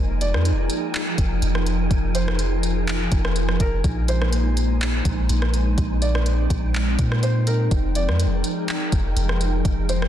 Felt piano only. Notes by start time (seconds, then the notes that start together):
0.21 D5
2.15 C5
3.61 A#4
4.09 C5
6.02 D5
7.23 C5
7.47 A#4
7.96 D5
9.89 C5